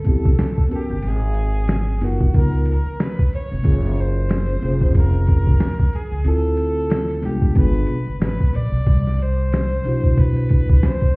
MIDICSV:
0, 0, Header, 1, 5, 480
1, 0, Start_track
1, 0, Tempo, 652174
1, 765, Time_signature, 4, 2, 24, 8
1, 8214, End_track
2, 0, Start_track
2, 0, Title_t, "Fiddle"
2, 0, Program_c, 0, 110
2, 0, Note_on_c, 0, 69, 86
2, 554, Note_on_c, 0, 67, 80
2, 565, Note_off_c, 0, 69, 0
2, 787, Note_on_c, 0, 68, 95
2, 798, Note_off_c, 0, 67, 0
2, 1453, Note_off_c, 0, 68, 0
2, 1453, Note_on_c, 0, 68, 57
2, 1502, Note_on_c, 0, 66, 77
2, 1513, Note_off_c, 0, 68, 0
2, 1734, Note_off_c, 0, 66, 0
2, 1740, Note_on_c, 0, 70, 90
2, 1957, Note_off_c, 0, 70, 0
2, 1987, Note_on_c, 0, 70, 94
2, 2224, Note_on_c, 0, 71, 96
2, 2235, Note_off_c, 0, 70, 0
2, 2455, Note_off_c, 0, 71, 0
2, 2460, Note_on_c, 0, 73, 99
2, 2945, Note_on_c, 0, 72, 103
2, 2956, Note_off_c, 0, 73, 0
2, 3655, Note_off_c, 0, 72, 0
2, 3663, Note_on_c, 0, 70, 100
2, 4381, Note_on_c, 0, 68, 88
2, 4392, Note_off_c, 0, 70, 0
2, 4615, Note_on_c, 0, 69, 106
2, 4626, Note_off_c, 0, 68, 0
2, 5336, Note_on_c, 0, 67, 85
2, 5347, Note_off_c, 0, 69, 0
2, 5565, Note_off_c, 0, 67, 0
2, 5570, Note_on_c, 0, 71, 97
2, 6018, Note_off_c, 0, 71, 0
2, 6050, Note_on_c, 0, 71, 96
2, 6299, Note_on_c, 0, 74, 101
2, 6310, Note_off_c, 0, 71, 0
2, 6780, Note_on_c, 0, 72, 105
2, 6791, Note_off_c, 0, 74, 0
2, 7498, Note_on_c, 0, 71, 99
2, 7509, Note_off_c, 0, 72, 0
2, 7986, Note_on_c, 0, 72, 102
2, 7997, Note_off_c, 0, 71, 0
2, 8214, Note_off_c, 0, 72, 0
2, 8214, End_track
3, 0, Start_track
3, 0, Title_t, "Tine electric piano"
3, 0, Program_c, 1, 4
3, 29, Note_on_c, 1, 59, 61
3, 42, Note_on_c, 1, 60, 57
3, 45, Note_on_c, 1, 64, 58
3, 56, Note_on_c, 1, 67, 74
3, 218, Note_off_c, 1, 59, 0
3, 225, Note_off_c, 1, 60, 0
3, 226, Note_off_c, 1, 64, 0
3, 231, Note_off_c, 1, 67, 0
3, 504, Note_on_c, 1, 59, 72
3, 515, Note_on_c, 1, 61, 62
3, 525, Note_on_c, 1, 66, 65
3, 536, Note_on_c, 1, 70, 71
3, 696, Note_off_c, 1, 59, 0
3, 701, Note_off_c, 1, 61, 0
3, 706, Note_off_c, 1, 66, 0
3, 711, Note_off_c, 1, 70, 0
3, 1478, Note_on_c, 1, 59, 75
3, 1484, Note_on_c, 1, 63, 61
3, 1493, Note_on_c, 1, 65, 63
3, 1502, Note_on_c, 1, 70, 73
3, 1663, Note_off_c, 1, 59, 0
3, 1665, Note_off_c, 1, 63, 0
3, 1670, Note_off_c, 1, 65, 0
3, 1675, Note_off_c, 1, 70, 0
3, 1707, Note_on_c, 1, 59, 62
3, 1718, Note_on_c, 1, 63, 60
3, 1725, Note_on_c, 1, 65, 57
3, 1735, Note_on_c, 1, 70, 65
3, 2013, Note_off_c, 1, 59, 0
3, 2018, Note_off_c, 1, 63, 0
3, 2022, Note_off_c, 1, 65, 0
3, 2027, Note_off_c, 1, 70, 0
3, 2668, Note_on_c, 1, 58, 66
3, 2678, Note_on_c, 1, 61, 62
3, 2687, Note_on_c, 1, 65, 58
3, 2698, Note_on_c, 1, 68, 74
3, 3357, Note_off_c, 1, 58, 0
3, 3362, Note_off_c, 1, 61, 0
3, 3367, Note_off_c, 1, 65, 0
3, 3372, Note_off_c, 1, 68, 0
3, 3394, Note_on_c, 1, 58, 66
3, 3404, Note_on_c, 1, 61, 62
3, 3411, Note_on_c, 1, 65, 64
3, 3422, Note_on_c, 1, 68, 75
3, 4080, Note_off_c, 1, 58, 0
3, 4085, Note_off_c, 1, 61, 0
3, 4089, Note_off_c, 1, 65, 0
3, 4094, Note_off_c, 1, 68, 0
3, 4596, Note_on_c, 1, 60, 64
3, 4603, Note_on_c, 1, 64, 59
3, 4613, Note_on_c, 1, 65, 64
3, 4622, Note_on_c, 1, 69, 78
3, 5281, Note_off_c, 1, 60, 0
3, 5285, Note_off_c, 1, 64, 0
3, 5290, Note_off_c, 1, 65, 0
3, 5294, Note_off_c, 1, 69, 0
3, 5308, Note_on_c, 1, 59, 59
3, 5318, Note_on_c, 1, 62, 56
3, 5331, Note_on_c, 1, 65, 54
3, 5342, Note_on_c, 1, 56, 71
3, 5547, Note_off_c, 1, 59, 0
3, 5555, Note_off_c, 1, 62, 0
3, 5555, Note_on_c, 1, 59, 64
3, 5562, Note_off_c, 1, 65, 0
3, 5564, Note_on_c, 1, 62, 55
3, 5571, Note_on_c, 1, 65, 59
3, 5585, Note_on_c, 1, 68, 68
3, 5687, Note_off_c, 1, 56, 0
3, 5857, Note_off_c, 1, 59, 0
3, 5862, Note_off_c, 1, 62, 0
3, 5865, Note_off_c, 1, 65, 0
3, 5872, Note_off_c, 1, 68, 0
3, 7239, Note_on_c, 1, 47, 70
3, 7251, Note_on_c, 1, 62, 60
3, 7262, Note_on_c, 1, 64, 62
3, 7268, Note_on_c, 1, 66, 78
3, 7923, Note_off_c, 1, 47, 0
3, 7929, Note_off_c, 1, 62, 0
3, 7935, Note_off_c, 1, 64, 0
3, 7938, Note_off_c, 1, 66, 0
3, 8214, End_track
4, 0, Start_track
4, 0, Title_t, "Upright bass"
4, 0, Program_c, 2, 32
4, 0, Note_on_c, 2, 31, 80
4, 155, Note_off_c, 2, 31, 0
4, 185, Note_on_c, 2, 35, 69
4, 267, Note_off_c, 2, 35, 0
4, 662, Note_on_c, 2, 31, 82
4, 746, Note_off_c, 2, 31, 0
4, 764, Note_on_c, 2, 32, 94
4, 1477, Note_off_c, 2, 32, 0
4, 1477, Note_on_c, 2, 30, 79
4, 1678, Note_off_c, 2, 30, 0
4, 1724, Note_on_c, 2, 37, 101
4, 2039, Note_off_c, 2, 37, 0
4, 2102, Note_on_c, 2, 39, 72
4, 2185, Note_off_c, 2, 39, 0
4, 2587, Note_on_c, 2, 29, 86
4, 2668, Note_off_c, 2, 29, 0
4, 2685, Note_on_c, 2, 30, 100
4, 3376, Note_off_c, 2, 30, 0
4, 3403, Note_on_c, 2, 29, 90
4, 4095, Note_off_c, 2, 29, 0
4, 4501, Note_on_c, 2, 37, 78
4, 4585, Note_off_c, 2, 37, 0
4, 4602, Note_on_c, 2, 38, 92
4, 5295, Note_off_c, 2, 38, 0
4, 5321, Note_on_c, 2, 36, 81
4, 5520, Note_off_c, 2, 36, 0
4, 5564, Note_on_c, 2, 31, 107
4, 5762, Note_off_c, 2, 31, 0
4, 5794, Note_on_c, 2, 35, 86
4, 5915, Note_off_c, 2, 35, 0
4, 5937, Note_on_c, 2, 31, 78
4, 6023, Note_off_c, 2, 31, 0
4, 6034, Note_on_c, 2, 32, 82
4, 6155, Note_off_c, 2, 32, 0
4, 6276, Note_on_c, 2, 34, 89
4, 6396, Note_off_c, 2, 34, 0
4, 6416, Note_on_c, 2, 35, 87
4, 6502, Note_off_c, 2, 35, 0
4, 6523, Note_on_c, 2, 36, 91
4, 7215, Note_off_c, 2, 36, 0
4, 7245, Note_on_c, 2, 35, 82
4, 7837, Note_off_c, 2, 35, 0
4, 7869, Note_on_c, 2, 38, 73
4, 7949, Note_off_c, 2, 38, 0
4, 8214, End_track
5, 0, Start_track
5, 0, Title_t, "Drums"
5, 33, Note_on_c, 9, 42, 66
5, 48, Note_on_c, 9, 36, 83
5, 107, Note_off_c, 9, 42, 0
5, 121, Note_off_c, 9, 36, 0
5, 186, Note_on_c, 9, 36, 91
5, 259, Note_off_c, 9, 36, 0
5, 284, Note_on_c, 9, 42, 98
5, 285, Note_on_c, 9, 38, 124
5, 358, Note_off_c, 9, 42, 0
5, 359, Note_off_c, 9, 38, 0
5, 424, Note_on_c, 9, 36, 89
5, 498, Note_off_c, 9, 36, 0
5, 525, Note_on_c, 9, 42, 70
5, 598, Note_off_c, 9, 42, 0
5, 755, Note_on_c, 9, 42, 79
5, 828, Note_off_c, 9, 42, 0
5, 988, Note_on_c, 9, 42, 60
5, 1061, Note_off_c, 9, 42, 0
5, 1234, Note_on_c, 9, 42, 82
5, 1243, Note_on_c, 9, 38, 115
5, 1307, Note_off_c, 9, 42, 0
5, 1316, Note_off_c, 9, 38, 0
5, 1479, Note_on_c, 9, 46, 62
5, 1486, Note_on_c, 9, 38, 33
5, 1553, Note_off_c, 9, 46, 0
5, 1559, Note_off_c, 9, 38, 0
5, 1623, Note_on_c, 9, 36, 88
5, 1696, Note_off_c, 9, 36, 0
5, 1723, Note_on_c, 9, 42, 81
5, 1725, Note_on_c, 9, 36, 91
5, 1797, Note_off_c, 9, 42, 0
5, 1798, Note_off_c, 9, 36, 0
5, 1858, Note_on_c, 9, 42, 43
5, 1931, Note_off_c, 9, 42, 0
5, 1955, Note_on_c, 9, 42, 67
5, 2028, Note_off_c, 9, 42, 0
5, 2208, Note_on_c, 9, 42, 96
5, 2209, Note_on_c, 9, 38, 121
5, 2282, Note_off_c, 9, 42, 0
5, 2283, Note_off_c, 9, 38, 0
5, 2348, Note_on_c, 9, 36, 100
5, 2421, Note_off_c, 9, 36, 0
5, 2449, Note_on_c, 9, 42, 66
5, 2523, Note_off_c, 9, 42, 0
5, 2677, Note_on_c, 9, 42, 84
5, 2684, Note_on_c, 9, 36, 104
5, 2750, Note_off_c, 9, 42, 0
5, 2758, Note_off_c, 9, 36, 0
5, 2835, Note_on_c, 9, 38, 29
5, 2908, Note_off_c, 9, 38, 0
5, 2915, Note_on_c, 9, 42, 55
5, 2989, Note_off_c, 9, 42, 0
5, 3161, Note_on_c, 9, 42, 89
5, 3169, Note_on_c, 9, 38, 123
5, 3234, Note_off_c, 9, 42, 0
5, 3243, Note_off_c, 9, 38, 0
5, 3402, Note_on_c, 9, 46, 56
5, 3475, Note_off_c, 9, 46, 0
5, 3543, Note_on_c, 9, 36, 92
5, 3617, Note_off_c, 9, 36, 0
5, 3641, Note_on_c, 9, 42, 89
5, 3644, Note_on_c, 9, 36, 82
5, 3715, Note_off_c, 9, 42, 0
5, 3717, Note_off_c, 9, 36, 0
5, 3781, Note_on_c, 9, 42, 50
5, 3855, Note_off_c, 9, 42, 0
5, 3878, Note_on_c, 9, 42, 66
5, 3888, Note_on_c, 9, 36, 85
5, 3951, Note_off_c, 9, 42, 0
5, 3962, Note_off_c, 9, 36, 0
5, 4026, Note_on_c, 9, 36, 91
5, 4100, Note_off_c, 9, 36, 0
5, 4123, Note_on_c, 9, 38, 120
5, 4123, Note_on_c, 9, 42, 100
5, 4196, Note_off_c, 9, 42, 0
5, 4197, Note_off_c, 9, 38, 0
5, 4264, Note_on_c, 9, 36, 94
5, 4338, Note_off_c, 9, 36, 0
5, 4362, Note_on_c, 9, 42, 69
5, 4436, Note_off_c, 9, 42, 0
5, 4596, Note_on_c, 9, 42, 75
5, 4669, Note_off_c, 9, 42, 0
5, 4836, Note_on_c, 9, 42, 59
5, 4909, Note_off_c, 9, 42, 0
5, 5080, Note_on_c, 9, 42, 86
5, 5089, Note_on_c, 9, 38, 116
5, 5153, Note_off_c, 9, 42, 0
5, 5162, Note_off_c, 9, 38, 0
5, 5316, Note_on_c, 9, 46, 63
5, 5322, Note_on_c, 9, 38, 33
5, 5389, Note_off_c, 9, 46, 0
5, 5396, Note_off_c, 9, 38, 0
5, 5459, Note_on_c, 9, 36, 84
5, 5533, Note_off_c, 9, 36, 0
5, 5558, Note_on_c, 9, 42, 83
5, 5561, Note_on_c, 9, 36, 95
5, 5631, Note_off_c, 9, 42, 0
5, 5635, Note_off_c, 9, 36, 0
5, 5697, Note_on_c, 9, 42, 47
5, 5771, Note_off_c, 9, 42, 0
5, 5791, Note_on_c, 9, 42, 65
5, 5864, Note_off_c, 9, 42, 0
5, 6047, Note_on_c, 9, 42, 95
5, 6048, Note_on_c, 9, 38, 123
5, 6121, Note_off_c, 9, 38, 0
5, 6121, Note_off_c, 9, 42, 0
5, 6186, Note_on_c, 9, 36, 91
5, 6259, Note_off_c, 9, 36, 0
5, 6288, Note_on_c, 9, 42, 68
5, 6362, Note_off_c, 9, 42, 0
5, 6523, Note_on_c, 9, 42, 76
5, 6525, Note_on_c, 9, 36, 106
5, 6597, Note_off_c, 9, 42, 0
5, 6599, Note_off_c, 9, 36, 0
5, 6677, Note_on_c, 9, 38, 31
5, 6750, Note_off_c, 9, 38, 0
5, 6760, Note_on_c, 9, 42, 55
5, 6833, Note_off_c, 9, 42, 0
5, 7010, Note_on_c, 9, 42, 83
5, 7018, Note_on_c, 9, 38, 106
5, 7083, Note_off_c, 9, 42, 0
5, 7092, Note_off_c, 9, 38, 0
5, 7247, Note_on_c, 9, 46, 63
5, 7321, Note_off_c, 9, 46, 0
5, 7387, Note_on_c, 9, 36, 85
5, 7461, Note_off_c, 9, 36, 0
5, 7489, Note_on_c, 9, 36, 94
5, 7491, Note_on_c, 9, 42, 89
5, 7562, Note_off_c, 9, 36, 0
5, 7565, Note_off_c, 9, 42, 0
5, 7629, Note_on_c, 9, 42, 50
5, 7702, Note_off_c, 9, 42, 0
5, 7721, Note_on_c, 9, 42, 65
5, 7732, Note_on_c, 9, 36, 89
5, 7794, Note_off_c, 9, 42, 0
5, 7806, Note_off_c, 9, 36, 0
5, 7871, Note_on_c, 9, 36, 94
5, 7945, Note_off_c, 9, 36, 0
5, 7970, Note_on_c, 9, 42, 89
5, 7971, Note_on_c, 9, 38, 121
5, 8044, Note_off_c, 9, 42, 0
5, 8045, Note_off_c, 9, 38, 0
5, 8109, Note_on_c, 9, 36, 86
5, 8183, Note_off_c, 9, 36, 0
5, 8214, End_track
0, 0, End_of_file